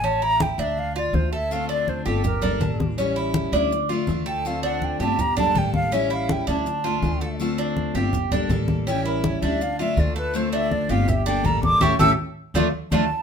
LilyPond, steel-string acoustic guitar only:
\new Staff \with { instrumentName = "Steel-string acoustic guitar" } { \time 4/4 \key d \minor \tempo 4 = 163 r1 | <d a c' f'>4. <a c' f'>8 r8 <g bes d' a'>8 <g bes d'>4 | <e g cis' e'>4. <g cis' e'>8 r8 <a d' f'>8 <a d' f'>4 | <d a c' f'>4. <a c' f'>8 r8 <g bes d' a'>8 <g bes d' a'>4 |
<e g cis' e'>4. <g cis' e'>8 r8 <a d' f'>8 <d a d' f'>4 | <d a c' f'>4. <a c' f'>8 r8 <g bes d' a'>8 <g bes d' a'>4 | <e g cis' e'>4. <g cis' e'>8 r8 <a d' f'>8 <d a d' f'>4 | <d a c' f'>4. <a c' f'>8 r8 <g bes d' a'>8 <g bes d' a'>4 |
<a cis' e'>8 <a cis' e'>8 r4 <f a d'>8 r8 <f a d'>8 r8 | }